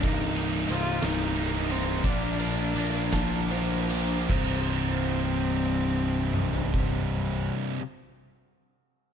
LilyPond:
<<
  \new Staff \with { instrumentName = "Clean electric guitar" } { \time 6/8 \key c \minor \tempo 4. = 49 bes'4 c''8 bes'4 c''8 | d''8 bes'4 a''8 c''4 | c''8 r2 r8 | r2. | }
  \new Staff \with { instrumentName = "Cello" } { \time 6/8 \key c \minor ees'4 f'8 ees'4 c'8 | d'2~ d'8 r8 | c'2.~ | c'2. | }
  \new Staff \with { instrumentName = "Distorted electric guitar" } { \time 6/8 \key c \minor <c, g, c g bes ees'>4 <c g bes ees'>8 <c, g, c g bes ees'>8 <c g bes ees'>4 | <bes, f bes d' f' bes'>4 <bes d' f' bes'>8 <bes, f bes d' f' bes'>8 <bes d' f' bes'>4 | <c, g, c>2.~ | <c, g, c>2. | }
  \new Staff \with { instrumentName = "Distorted electric guitar" } { \time 6/8 \key c \minor <c, g, c g bes ees'>8 <c g bes ees'>8 <c g bes ees'>8 <c, g, c g bes ees'>8 <c g bes ees'>4 | <bes, f bes d' f' bes'>8 <bes d' f' bes'>8 <bes d' f' bes'>8 <bes, f bes d' f' bes'>8 <bes d' f' bes'>4 | <c, g, c g bes ees'>2.~ | <c, g, c g bes ees'>2. | }
  \new Staff \with { instrumentName = "Picked electric bass" } { \clef bass \time 6/8 \key c \minor c,,4 c,,8 c,,4. | bes,,4 bes,,8 bes,,4. | c,,2.~ | c,,2. | }
  \new DrumStaff \with { instrumentName = "Drums" } \drummode { \time 6/8 <cymc bd>8 cymr8 cymr8 <cymr sn>8 cymr8 cymr8 | <bd cymr>8 cymr8 cymr8 <bd cymr sn>8 cymr8 cymr8 | <cymc bd>4. r4 toml16 tomfh16 | bd4. r4. | }
>>